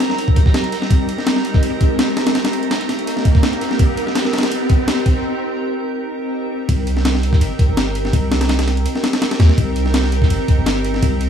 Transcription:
0.00 0.17 C2 loud
0.00 5.24 A#5 medium
0.00 snare loud
0.00 closed hi-hat medium
0.00 ride medium
0.00 riser medium
0.10 snare medium
0.18 closed hi-hat medium
0.18 ride medium
0.28 kick medium
0.36 0.45 D#2 medium
0.36 kick medium
0.36 closed hi-hat medium
0.36 ride medium
0.46 kick medium
0.46 snare soft
0.54 snare loud
0.54 closed hi-hat medium
0.54 ride medium
0.64 ride soft
0.72 snare soft
0.72 closed hi-hat medium
0.72 ride medium
0.82 snare medium
0.90 1.61 C2 loud
0.90 kick loud
0.90 closed hi-hat medium
0.90 ride medium
1.08 closed hi-hat medium
1.08 ride medium
1.18 snare soft
1.27 snare loud
1.27 closed hi-hat medium
1.27 ride medium
1.36 snare medium
1.45 closed hi-hat medium
1.45 ride medium
1.54 kick loud
1.54 snare medium
1.63 1.72 G1 loud
1.63 closed hi-hat medium
1.63 ride medium
1.80 kick medium
1.80 closed hi-hat medium
1.80 ride medium
1.91 2.34 G1 medium
1.99 snare loud
1.99 closed hi-hat medium
1.99 ride medium
2.08 closed hi-hat soft
2.17 snare loud
2.17 closed hi-hat medium
2.17 ride medium
2.27 snare loud
2.27 ride medium
2.35 3.06 C2 loud
2.35 snare loud
2.35 closed hi-hat medium
2.35 ride medium
2.45 snare loud
2.45 ride medium
2.53 closed hi-hat medium
2.53 ride medium
2.63 ride soft
2.71 snare loud
2.71 closed hi-hat medium
2.71 ride medium
2.81 snare medium
2.81 ride soft
2.89 snare soft
2.89 closed hi-hat medium
2.89 ride medium
2.99 ride soft
3.07 closed hi-hat medium
3.07 ride medium
3.17 snare medium
3.25 kick medium
3.25 closed hi-hat medium
3.25 ride medium
3.35 kick loud
3.35 snare soft
3.43 snare loud
3.43 closed hi-hat medium
3.43 ride medium
3.53 ride soft
3.61 3.70 D#2 medium
3.61 snare soft
3.61 closed hi-hat medium
3.61 ride medium
3.71 snare medium
3.79 4.51 C2 loud
3.79 kick loud
3.79 closed hi-hat medium
3.79 ride medium
3.97 closed hi-hat medium
3.97 ride medium
4.07 snare soft
4.15 snare loud
4.15 closed hi-hat medium
4.15 ride medium
4.25 snare medium
4.33 snare medium
4.33 closed hi-hat medium
4.33 ride medium
4.38 snare medium
4.38 ride medium
4.43 snare loud
4.43 snare medium
4.43 ride medium
4.52 4.61 G1 loud
4.52 closed hi-hat medium
4.52 ride medium
4.70 kick loud
4.70 closed hi-hat medium
4.70 ride medium
4.80 5.23 G1 medium
4.88 snare loud
4.88 closed hi-hat medium
4.88 ride medium
4.98 closed hi-hat soft
5.06 kick loud
5.06 closed hi-hat medium
5.06 ride medium
6.69 7.40 C2 loud
6.69 kick loud
6.69 closed hi-hat medium
6.69 ride medium
6.87 closed hi-hat medium
6.87 ride medium
6.97 snare soft
7.05 snare loud
7.05 closed hi-hat medium
7.05 ride medium
7.15 snare medium
7.23 closed hi-hat medium
7.23 ride medium
7.33 kick loud
7.33 snare medium
7.41 7.50 G1 loud
7.41 closed hi-hat medium
7.41 ride medium
7.59 kick medium
7.59 closed hi-hat medium
7.59 ride medium
7.69 8.12 G1 medium
7.77 snare loud
7.77 closed hi-hat loud
7.77 ride medium
7.87 closed hi-hat soft
7.95 closed hi-hat medium
7.95 ride medium
8.05 snare soft
8.13 8.84 C2 loud
8.13 kick loud
8.13 closed hi-hat medium
8.13 ride medium
8.32 snare loud
8.32 closed hi-hat medium
8.32 ride medium
8.41 snare loud
8.41 ride medium
8.49 snare loud
8.49 closed hi-hat medium
8.49 ride medium
8.59 snare loud
8.59 snare medium
8.59 ride medium
8.67 snare medium
8.67 closed hi-hat medium
8.67 ride medium
8.77 ride soft
8.85 closed hi-hat medium
8.85 ride medium
8.95 snare medium
9.04 snare loud
9.04 closed hi-hat medium
9.04 ride medium
9.13 snare soft
9.13 snare loud
9.13 ride medium
9.22 snare loud
9.22 closed hi-hat medium
9.22 ride medium
9.31 snare loud
9.31 ride medium
9.39 9.49 D#2 medium
9.39 snare loud
9.39 snare soft
9.39 closed hi-hat medium
9.39 ride medium
9.49 snare medium
9.57 10.29 C2 loud
9.57 kick loud
9.57 closed hi-hat medium
9.57 ride medium
9.76 closed hi-hat medium
9.76 ride medium
9.86 snare soft
9.94 snare loud
9.94 closed hi-hat medium
9.94 ride medium
10.04 snare medium
10.12 closed hi-hat medium
10.12 ride medium
10.22 kick loud
10.22 snare medium
10.30 10.39 G1 loud
10.30 closed hi-hat medium
10.30 ride medium
10.48 kick medium
10.48 closed hi-hat medium
10.48 ride medium
10.58 11.01 G1 medium
10.66 snare loud
10.66 closed hi-hat medium
10.66 ride medium
10.76 closed hi-hat soft
10.84 closed hi-hat medium
10.84 ride medium
10.94 snare soft
11.03 11.29 C2 loud
11.03 kick loud
11.03 closed hi-hat medium
11.03 ride medium
11.21 closed hi-hat medium
11.21 ride medium

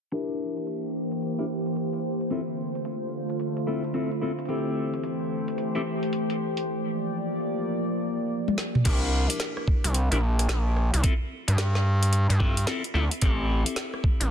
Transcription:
0.12 2.29 E3 medium
0.12 2.29 A#3 medium
0.12 1.35 D4 medium
0.12 1.35 E4 medium
0.12 2.29 G4 medium
0.12 1.35 G4 medium
0.12 1.35 A#4 medium
0.12 4.45 C5 medium
0.12 closed hi-hat medium
0.57 closed hi-hat medium
0.67 closed hi-hat medium
1.12 closed hi-hat medium
1.22 closed hi-hat medium
1.39 1.44 D4 medium
1.39 1.44 E4 medium
1.39 1.44 G4 medium
1.39 1.44 A#4 medium
1.39 closed hi-hat soft
1.66 closed hi-hat medium
1.76 closed hi-hat medium
1.93 closed hi-hat soft
2.21 closed hi-hat soft
2.30 4.47 D3 medium
2.30 4.47 A3 medium
2.30 2.40 C4 medium
2.30 2.40 E4 medium
2.30 4.47 F4 medium
2.30 2.40 F4 medium
2.30 2.40 A4 medium
2.30 closed hi-hat medium
2.75 closed hi-hat medium
2.85 closed hi-hat medium
3.30 closed hi-hat medium
3.40 closed hi-hat medium
3.57 closed hi-hat soft
3.67 3.82 C4 medium
3.67 3.82 E4 medium
3.67 3.82 F4 medium
3.67 3.82 A4 medium
3.84 closed hi-hat soft
3.94 4.09 C4 medium
3.94 4.09 E4 medium
3.94 4.09 F4 medium
3.94 4.09 A4 medium
3.94 closed hi-hat medium
4.12 closed hi-hat soft
4.21 4.31 C4 medium
4.21 4.31 E4 medium
4.21 4.31 F4 medium
4.21 4.31 A4 medium
4.39 closed hi-hat soft
4.45 5.71 C4 medium
4.45 6.65 C5 medium
4.45 closed hi-hat soft
4.49 6.65 E3 medium
4.49 6.65 A3 medium
4.49 5.71 E4 medium
4.49 5.71 G4 medium
4.49 8.81 G4 medium
4.49 5.71 A4 medium
4.49 closed hi-hat medium
4.55 closed hi-hat soft
4.58 closed hi-hat soft
4.94 closed hi-hat soft
5.04 closed hi-hat medium
5.48 closed hi-hat medium
5.58 closed hi-hat medium
5.75 5.81 C4 medium
5.75 5.81 E4 medium
5.75 5.81 G4 medium
5.75 5.81 A4 medium
5.75 closed hi-hat soft
6.03 closed hi-hat soft
6.13 closed hi-hat medium
6.30 closed hi-hat soft
6.57 closed hi-hat soft
6.66 8.83 F3 medium
6.66 8.83 A#3 medium
6.66 8.83 D5 medium
8.48 high tom soft
8.58 snare medium
8.75 mid tom medium
8.85 9.27 C2 medium
8.85 10.07 D4 medium
8.85 10.07 E4 medium
8.85 10.07 G4 medium
8.85 10.07 A#4 medium
8.85 kick loud
8.85 closed hi-hat medium
8.85 crash medium
9.30 closed hi-hat medium
9.40 snare loud
9.40 closed hi-hat medium
9.57 cross-stick medium
9.68 kick loud
9.84 10.09 C2 medium
9.84 closed hi-hat medium
9.94 closed hi-hat medium
10.11 10.47 A#1 loud
10.11 10.17 D4 medium
10.11 10.17 E4 medium
10.11 10.17 G4 medium
10.11 10.17 A#4 medium
10.11 closed hi-hat soft
10.39 cross-stick soft
10.39 closed hi-hat medium
10.49 10.91 A#1 medium
10.49 snare loud
10.49 closed hi-hat medium
10.76 cross-stick soft
10.94 11.02 C2 medium
10.94 closed hi-hat medium
11.03 11.13 C4 medium
11.03 11.13 E4 medium
11.03 11.13 F4 medium
11.03 11.13 A4 medium
11.03 kick loud
11.03 closed hi-hat medium
11.48 12.27 G2 loud
11.48 closed hi-hat medium
11.58 snare loud
11.58 closed hi-hat medium
11.75 cross-stick medium
11.75 snare soft
12.03 closed hi-hat medium
12.13 closed hi-hat medium
12.30 12.65 G2 medium
12.30 closed hi-hat soft
12.40 12.55 C4 medium
12.40 12.55 E4 medium
12.40 12.55 F4 medium
12.40 12.55 A4 medium
12.40 kick loud
12.57 closed hi-hat medium
12.67 12.82 C4 medium
12.67 12.82 E4 medium
12.67 12.82 F4 medium
12.67 12.82 A4 medium
12.67 snare loud
12.67 closed hi-hat medium
12.84 closed hi-hat soft
12.94 13.09 D2 medium
12.94 13.04 C4 medium
12.94 13.04 E4 medium
12.94 13.04 F4 medium
12.94 13.04 A4 medium
13.11 closed hi-hat medium
13.22 13.64 A1 medium
13.22 14.31 C4 medium
13.22 14.31 E4 medium
13.22 14.31 G4 medium
13.22 14.31 A4 medium
13.22 kick loud
13.22 closed hi-hat medium
13.66 closed hi-hat medium
13.76 snare loud
13.76 closed hi-hat medium
13.94 cross-stick soft
14.04 kick loud
14.20 14.31 A1 medium
14.20 closed hi-hat medium

